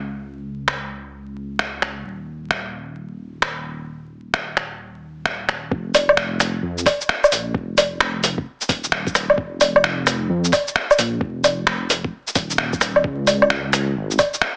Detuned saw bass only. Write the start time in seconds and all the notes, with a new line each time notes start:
Already playing: C#2
2.05 D#1
5.71 F1
6.63 F2
7.32 A#1
7.54 F1
8.69 D#1
9.38 F1
10.29 F2
10.98 A#1
11.21 F1
12.35 D#1
13.04 C#2
13.96 G#1